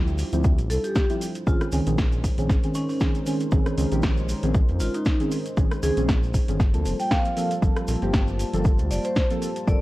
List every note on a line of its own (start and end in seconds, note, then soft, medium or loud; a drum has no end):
0.00 0.24 D2 medium
0.00 1.43 G3 medium
0.00 1.43 D4 medium
0.00 1.43 E4 medium
0.00 1.43 F4 medium
0.00 9.81 C5 medium
0.07 shaker soft
0.18 open hi-hat loud
0.18 shaker medium
0.32 0.60 D2 medium
0.32 0.49 F3 loud
0.32 0.49 C4 medium
0.32 0.49 E4 medium
0.32 0.49 G4 loud
0.32 closed hi-hat medium
0.32 shaker soft
0.44 kick loud
0.44 shaker medium
0.58 0.71 A1 loud
0.58 closed hi-hat medium
0.58 shaker soft
0.70 0.78 C2 loud
0.70 0.81 A4 medium
0.70 open hi-hat loud
0.70 shaker loud
0.84 0.91 G4 medium
0.84 closed hi-hat medium
0.84 shaker soft
0.95 1.05 G4 medium
0.95 kick loud
0.95 snare loud
0.95 shaker medium
1.09 1.26 F3 medium
1.09 1.26 C4 medium
1.09 1.26 E4 medium
1.09 1.26 G4 loud
1.09 closed hi-hat medium
1.09 shaker soft
1.21 open hi-hat loud
1.21 shaker loud
1.35 closed hi-hat medium
1.35 shaker soft
1.46 1.55 A#1 loud
1.46 1.65 D#3 medium
1.46 6.56 G#3 medium
1.46 1.65 C4 medium
1.46 6.56 C#4 medium
1.46 1.65 C#4 medium
1.46 6.56 D#4 medium
1.46 1.63 F4 loud
1.46 1.65 G#4 medium
1.46 6.56 A#4 medium
1.46 kick loud
1.46 shaker medium
1.61 cross-stick medium
1.61 closed hi-hat soft
1.61 shaker soft
1.72 1.81 C#2 medium
1.72 1.84 D#3 loud
1.72 1.84 C4 medium
1.72 1.85 C#4 medium
1.72 1.85 G#4 loud
1.72 open hi-hat loud
1.72 shaker loud
1.86 2.29 A#1 medium
1.86 2.03 D#3 loud
1.86 2.03 C4 medium
1.86 2.03 C#4 medium
1.86 2.03 G#4 loud
1.86 closed hi-hat medium
1.86 shaker soft
1.98 kick loud
1.98 snare loud
1.98 shaker medium
2.12 closed hi-hat soft
2.12 shaker soft
2.24 kick medium
2.24 open hi-hat loud
2.24 shaker medium
2.38 2.49 A#1 medium
2.38 2.54 D#3 medium
2.38 2.54 C4 medium
2.38 2.54 C#4 medium
2.38 2.54 G#4 medium
2.38 closed hi-hat medium
2.38 shaker soft
2.49 2.58 G#1 medium
2.49 kick loud
2.49 snare medium
2.49 shaker medium
2.63 2.86 D#3 medium
2.63 2.86 C4 medium
2.63 2.86 C#4 medium
2.63 2.86 G#4 medium
2.63 closed hi-hat soft
2.63 shaker soft
2.74 2.84 C#4 medium
2.74 open hi-hat loud
2.74 shaker medium
2.89 2.97 C#4 medium
2.89 open hi-hat medium
2.89 shaker soft
3.00 3.19 D#3 medium
3.00 3.19 C4 medium
3.00 3.19 C#4 medium
3.00 3.19 G#4 loud
3.00 kick loud
3.00 snare loud
3.00 shaker medium
3.15 closed hi-hat medium
3.15 shaker soft
3.26 3.44 D#3 medium
3.26 3.44 C4 medium
3.26 3.44 C#4 medium
3.26 3.45 G#4 medium
3.26 open hi-hat loud
3.26 shaker loud
3.40 closed hi-hat medium
3.40 shaker soft
3.51 3.61 A#1 loud
3.51 3.75 D#3 medium
3.51 3.75 C4 medium
3.51 3.75 C#4 medium
3.51 3.75 G#4 loud
3.51 kick loud
3.51 shaker soft
3.66 cross-stick medium
3.66 closed hi-hat soft
3.66 shaker soft
3.77 3.86 C#2 medium
3.77 3.88 D#3 medium
3.77 3.88 C4 medium
3.77 3.88 C#4 medium
3.77 3.89 G#4 medium
3.77 open hi-hat loud
3.77 shaker medium
3.91 4.34 A#1 medium
3.91 4.19 D#3 loud
3.91 4.19 C4 medium
3.91 4.19 C#4 medium
3.91 4.19 G4 loud
3.91 closed hi-hat medium
3.91 shaker soft
4.03 kick loud
4.03 snare loud
4.03 shaker soft
4.17 shaker soft
4.29 open hi-hat loud
4.29 shaker medium
4.43 4.70 A#1 medium
4.43 4.59 D#3 medium
4.43 4.59 C4 medium
4.43 4.59 C#4 medium
4.43 4.59 G#4 loud
4.43 closed hi-hat medium
4.43 shaker soft
4.55 kick loud
4.55 shaker soft
4.68 4.82 F2 medium
4.68 closed hi-hat soft
4.68 shaker soft
4.80 4.89 G#1 loud
4.80 4.92 F4 medium
4.80 open hi-hat loud
4.80 shaker loud
4.94 5.02 D#4 medium
4.94 closed hi-hat medium
4.94 shaker soft
5.05 5.15 D#4 medium
5.05 kick loud
5.05 snare loud
5.05 shaker medium
5.20 5.36 D#3 medium
5.20 5.36 C4 medium
5.20 5.36 C#4 medium
5.20 5.36 G#4 loud
5.20 closed hi-hat medium
5.20 shaker soft
5.31 open hi-hat loud
5.31 shaker medium
5.46 closed hi-hat medium
5.46 shaker soft
5.57 5.66 A#1 loud
5.57 5.75 D#3 medium
5.57 5.75 C4 medium
5.57 5.75 C#4 medium
5.57 5.75 G#4 medium
5.57 kick loud
5.57 shaker medium
5.71 cross-stick medium
5.71 closed hi-hat soft
5.71 shaker soft
5.82 5.91 C#2 medium
5.82 5.95 D#3 loud
5.82 5.95 C4 medium
5.82 5.95 C#4 medium
5.82 5.99 G#4 medium
5.82 5.95 G#4 loud
5.82 open hi-hat loud
5.82 shaker medium
5.96 6.39 A#1 medium
5.96 6.13 D#3 loud
5.96 6.13 C4 medium
5.96 6.13 C#4 medium
5.96 6.13 G#4 loud
5.96 closed hi-hat medium
5.96 shaker soft
6.08 kick loud
6.08 snare loud
6.08 shaker soft
6.23 shaker soft
6.34 kick medium
6.34 open hi-hat loud
6.34 shaker medium
6.48 6.75 G1 medium
6.48 6.58 D#3 medium
6.48 6.58 C4 medium
6.48 6.58 C#4 medium
6.48 6.59 G#4 medium
6.48 closed hi-hat medium
6.48 shaker soft
6.60 9.81 G3 medium
6.60 9.81 A#3 medium
6.60 9.81 F4 medium
6.60 9.81 A5 medium
6.60 kick loud
6.60 snare medium
6.60 shaker soft
6.73 6.87 D2 medium
6.73 6.96 F3 medium
6.73 6.96 A#3 medium
6.73 6.96 C4 medium
6.73 6.96 A4 medium
6.73 closed hi-hat soft
6.73 shaker soft
6.85 6.94 F1 loud
6.85 open hi-hat loud
6.85 shaker medium
7.00 7.09 G5 medium
7.00 open hi-hat medium
7.00 shaker soft
7.11 7.29 F3 medium
7.11 7.29 A#3 medium
7.11 7.29 C4 medium
7.11 7.29 A4 loud
7.11 7.51 F5 medium
7.11 kick loud
7.11 snare loud
7.11 shaker medium
7.25 closed hi-hat medium
7.25 shaker soft
7.36 7.54 F3 medium
7.36 7.55 A#3 medium
7.36 7.55 C4 medium
7.36 7.55 A4 medium
7.36 open hi-hat loud
7.36 shaker medium
7.51 closed hi-hat medium
7.51 shaker soft
7.62 7.71 G1 loud
7.62 7.85 F3 medium
7.62 7.85 A#3 medium
7.62 7.85 C4 medium
7.62 7.85 A4 loud
7.62 kick loud
7.62 shaker medium
7.76 cross-stick medium
7.76 closed hi-hat soft
7.76 shaker soft
7.88 7.96 A#1 medium
7.88 7.99 F3 medium
7.88 7.99 A#3 medium
7.88 7.99 C4 medium
7.88 7.99 A4 medium
7.88 open hi-hat loud
7.88 shaker loud
8.02 8.44 G1 medium
8.02 8.29 F3 loud
8.02 8.29 A#3 medium
8.02 8.29 C4 medium
8.02 8.29 G4 loud
8.02 closed hi-hat medium
8.02 shaker soft
8.14 kick loud
8.14 snare loud
8.14 shaker soft
8.28 shaker soft
8.39 open hi-hat loud
8.39 shaker medium
8.53 8.80 G1 medium
8.53 8.69 F3 loud
8.53 8.70 A#3 medium
8.53 8.70 C4 medium
8.53 8.70 A4 loud
8.53 closed hi-hat medium
8.53 shaker soft
8.64 kick loud
8.64 shaker medium
8.78 8.92 D2 loud
8.78 closed hi-hat medium
8.78 shaker soft
8.90 8.99 F1 loud
8.90 9.02 D5 medium
8.90 open hi-hat loud
8.90 shaker loud
9.04 9.12 C5 medium
9.04 closed hi-hat medium
9.04 shaker soft
9.16 9.25 C5 medium
9.16 kick loud
9.16 snare loud
9.16 shaker soft
9.30 9.46 F3 medium
9.30 9.46 A#3 medium
9.30 9.47 C4 medium
9.30 9.47 A4 loud
9.30 closed hi-hat medium
9.30 shaker soft
9.42 open hi-hat loud
9.42 shaker medium
9.56 closed hi-hat medium
9.56 shaker soft
9.67 9.76 G1 loud
9.67 9.81 F3 medium
9.67 9.81 A#3 medium
9.67 9.81 C4 medium
9.67 9.81 A4 medium
9.67 9.81 D5 loud
9.67 kick loud
9.67 shaker medium